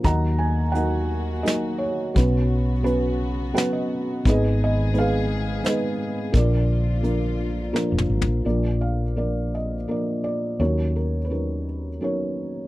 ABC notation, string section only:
X:1
M:3/4
L:1/8
Q:1/4=85
K:Ebm
V:1 name="String section"
[E,B,G]6 | [^C,=B,^F]6 | [E,CA]6 | [=D,B,F]6 |
z6 | z6 |]